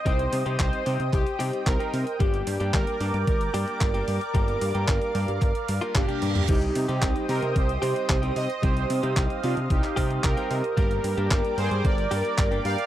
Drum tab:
CC |----------------|----------------|----------------|x---------------|
HH |xxoxxxoxxxoxxxox|xxoxxxoxxxoxxxox|xxoxxxoxxxoxxxox|xxoxxxoxxxoxxxox|
CP |----x---x---x---|----x-------x---|----x---x---x---|----x-------x---|
T1 |----------------|----------------|------------oo--|----------------|
T2 |----------------|----------------|---------------o|----------------|
BD |o---o---o---o---|o---o---o---o---|o---o---o---o---|o---o---o---o---|

CC |----------------|----------------|
HH |xxoxxxoxxxoxxxox|xxoxxxoxxxoxxxox|
CP |----x----x--x---|----x-------x---|
T1 |----------------|----------------|
T2 |----------------|----------------|
BD |o---o---o-o-o---|o---o---o---o---|